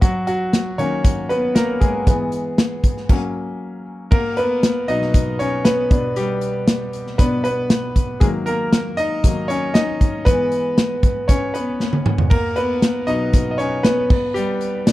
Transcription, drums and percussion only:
0.02 kick, closed hi-hat
0.27 closed hi-hat
0.53 snare, closed hi-hat
0.79 closed hi-hat
1.04 kick, closed hi-hat
1.30 closed hi-hat
1.56 snare, closed hi-hat
1.81 kick, closed hi-hat
2.07 kick, closed hi-hat
2.32 closed hi-hat
2.58 snare, closed hi-hat
2.84 kick, closed hi-hat
2.97 snare
3.09 kick, crash
4.12 kick, crash
4.37 closed hi-hat
4.63 snare, closed hi-hat
4.88 closed hi-hat
5.02 snare
5.14 kick, closed hi-hat
5.40 closed hi-hat
5.65 snare, closed hi-hat
5.91 kick, closed hi-hat
6.16 closed hi-hat
6.41 closed hi-hat
6.68 snare, closed hi-hat
6.93 closed hi-hat
7.07 snare
7.19 kick, closed hi-hat
7.45 closed hi-hat
7.70 snare, closed hi-hat
7.96 kick, closed hi-hat
8.21 kick, closed hi-hat
8.46 closed hi-hat
8.73 snare, closed hi-hat
8.98 closed hi-hat
9.24 kick, closed hi-hat
9.50 closed hi-hat
9.75 snare, closed hi-hat
10.01 kick, closed hi-hat
10.26 kick, closed hi-hat
10.52 closed hi-hat
10.78 snare, closed hi-hat
11.03 kick, closed hi-hat
11.29 kick, closed hi-hat
11.55 closed hi-hat
11.80 snare
11.93 high tom
12.06 mid tom
12.18 floor tom
12.31 kick, crash
12.56 closed hi-hat
12.82 snare, closed hi-hat
13.08 closed hi-hat
13.33 kick, closed hi-hat
13.59 closed hi-hat
13.84 snare, closed hi-hat
14.10 kick, crash
14.36 closed hi-hat
14.61 closed hi-hat
14.87 snare, closed hi-hat

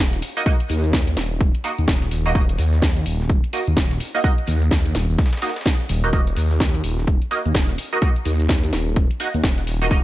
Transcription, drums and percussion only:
0.13 snare, closed hi-hat
0.22 open hi-hat, shaker
0.37 shaker
0.46 kick, closed hi-hat, tambourine, shaker
0.60 closed hi-hat
0.70 open hi-hat, tambourine, shaker
0.84 closed hi-hat, shaker
0.93 kick, snare, closed hi-hat, tambourine, shaker
1.08 closed hi-hat
1.17 snare, open hi-hat, tambourine, shaker
1.32 shaker
1.40 kick, closed hi-hat, tambourine, shaker
1.55 closed hi-hat
1.64 snare, open hi-hat, tambourine, shaker
1.78 closed hi-hat, shaker
1.88 kick, snare, closed hi-hat, tambourine, shaker
2.02 snare, closed hi-hat
2.11 snare, open hi-hat, tambourine, shaker
2.26 shaker
2.35 kick, closed hi-hat, tambourine, shaker
2.49 closed hi-hat
2.59 open hi-hat, tambourine, shaker
2.73 snare, shaker
2.82 kick, snare, closed hi-hat, tambourine, shaker
2.97 closed hi-hat
3.06 open hi-hat, tambourine, shaker
3.20 snare, shaker
3.29 kick, closed hi-hat, tambourine, shaker
3.44 closed hi-hat
3.53 open hi-hat, tambourine, shaker
3.67 closed hi-hat, shaker
3.77 kick, snare, closed hi-hat, tambourine, shaker
3.91 snare, closed hi-hat
4.00 open hi-hat, shaker
4.15 shaker
4.24 kick, closed hi-hat, tambourine, shaker
4.38 closed hi-hat
4.48 open hi-hat, tambourine, shaker
4.62 closed hi-hat, shaker
4.71 kick, snare, closed hi-hat, tambourine, shaker
4.86 closed hi-hat
4.95 snare, open hi-hat, tambourine, shaker
5.10 shaker
5.18 kick, snare, closed hi-hat, tambourine, shaker
5.26 snare, tambourine
5.33 snare, closed hi-hat, tambourine
5.37 snare, tambourine
5.42 snare, open hi-hat, tambourine, shaker
5.49 snare, tambourine
5.56 snare, closed hi-hat, tambourine, shaker
5.61 snare, tambourine
5.66 kick, snare, closed hi-hat, shaker
5.80 snare, closed hi-hat
5.89 snare, open hi-hat, tambourine, shaker
6.04 shaker
6.13 kick, closed hi-hat, tambourine, shaker
6.27 closed hi-hat
6.37 open hi-hat, tambourine, shaker
6.51 snare, shaker
6.60 kick, snare, closed hi-hat, tambourine, shaker
6.75 closed hi-hat
6.84 open hi-hat, tambourine, shaker
6.98 snare, shaker
7.07 kick, closed hi-hat, tambourine, shaker
7.22 closed hi-hat
7.31 open hi-hat, tambourine, shaker
7.45 closed hi-hat, shaker
7.55 kick, snare, closed hi-hat, tambourine, shaker
7.69 snare, closed hi-hat
7.78 open hi-hat, shaker
7.93 shaker
8.02 kick, closed hi-hat, tambourine, shaker
8.16 closed hi-hat
8.25 open hi-hat, tambourine, shaker
8.40 closed hi-hat, shaker
8.49 kick, snare, closed hi-hat, tambourine, shaker
8.63 closed hi-hat
8.73 snare, open hi-hat, tambourine, shaker
8.88 shaker
8.96 kick, closed hi-hat, tambourine, shaker
9.11 closed hi-hat
9.20 snare, open hi-hat, tambourine, shaker
9.34 closed hi-hat, shaker
9.44 kick, snare, closed hi-hat, tambourine, shaker
9.58 snare, closed hi-hat
9.67 snare, open hi-hat, tambourine, shaker
9.82 shaker
9.91 kick, closed hi-hat, tambourine, shaker

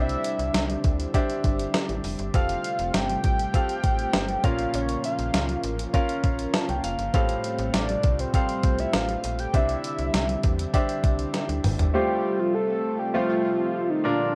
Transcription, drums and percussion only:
0.09 closed hi-hat
0.24 closed hi-hat
0.39 closed hi-hat
0.54 snare, closed hi-hat
0.70 closed hi-hat
0.84 kick, closed hi-hat
1.00 closed hi-hat
1.14 kick, closed hi-hat
1.30 closed hi-hat
1.44 kick, closed hi-hat
1.59 closed hi-hat
1.74 snare, closed hi-hat
1.89 closed hi-hat
2.04 open hi-hat
2.19 closed hi-hat
2.34 kick, closed hi-hat
2.49 closed hi-hat
2.64 closed hi-hat
2.79 closed hi-hat
2.94 snare, closed hi-hat
3.09 closed hi-hat
3.24 kick, closed hi-hat
3.39 closed hi-hat
3.54 kick, closed hi-hat
3.69 closed hi-hat
3.84 kick, closed hi-hat
3.99 closed hi-hat
4.13 snare, closed hi-hat
4.29 closed hi-hat
4.44 kick, closed hi-hat
4.59 closed hi-hat
4.74 closed hi-hat
4.89 closed hi-hat
5.04 closed hi-hat
5.19 closed hi-hat
5.34 snare, closed hi-hat
5.49 closed hi-hat
5.64 closed hi-hat
5.79 closed hi-hat
5.94 kick, closed hi-hat
6.09 closed hi-hat
6.24 kick, closed hi-hat
6.39 closed hi-hat
6.54 snare, closed hi-hat
6.69 closed hi-hat
6.84 closed hi-hat
6.99 closed hi-hat
7.14 kick, closed hi-hat
7.29 closed hi-hat
7.44 closed hi-hat
7.59 closed hi-hat
7.74 snare, closed hi-hat
7.89 closed hi-hat
8.03 kick, closed hi-hat
8.19 closed hi-hat
8.34 kick, closed hi-hat
8.49 closed hi-hat
8.63 kick, closed hi-hat
8.79 closed hi-hat
8.93 snare, closed hi-hat
9.09 closed hi-hat
9.24 closed hi-hat
9.39 closed hi-hat
9.54 kick, closed hi-hat
9.69 closed hi-hat
9.84 closed hi-hat
9.99 closed hi-hat
10.14 snare, closed hi-hat
10.29 closed hi-hat
10.44 kick, closed hi-hat
10.59 closed hi-hat
10.74 kick, closed hi-hat
10.89 closed hi-hat
11.04 kick, closed hi-hat
11.19 closed hi-hat
11.34 snare, closed hi-hat
11.49 closed hi-hat
11.64 mid tom, open hi-hat
11.79 closed hi-hat, floor tom

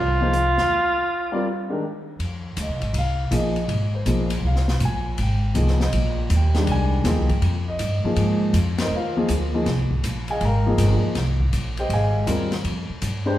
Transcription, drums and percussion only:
0.33 closed hi-hat
0.58 snare
2.20 ride
2.57 hi-hat pedal, ride
2.81 ride
2.94 ride
3.31 hi-hat pedal, ride
3.56 ride
3.69 ride
4.06 hi-hat pedal, ride
4.30 ride
4.56 snare
4.68 snare
4.80 hi-hat pedal, ride
5.18 ride
5.55 hi-hat pedal, ride
5.68 snare
5.80 snare
5.93 ride
6.30 hi-hat pedal, ride
6.54 snare, ride
6.67 ride
7.05 snare, hi-hat pedal, ride
7.29 kick, ride
7.42 ride
7.79 hi-hat pedal, ride
8.16 ride
8.54 hi-hat pedal, ride
8.78 snare, ride
9.28 hi-hat pedal, ride
9.66 snare, ride
9.91 kick
10.04 hi-hat pedal, ride
10.28 ride
10.41 ride
10.78 hi-hat pedal, ride
11.15 snare, ride
11.40 kick
11.53 hi-hat pedal, ride
11.77 ride
11.90 ride
12.27 hi-hat pedal, ride
12.52 snare, ride
12.64 ride
13.02 hi-hat pedal, ride

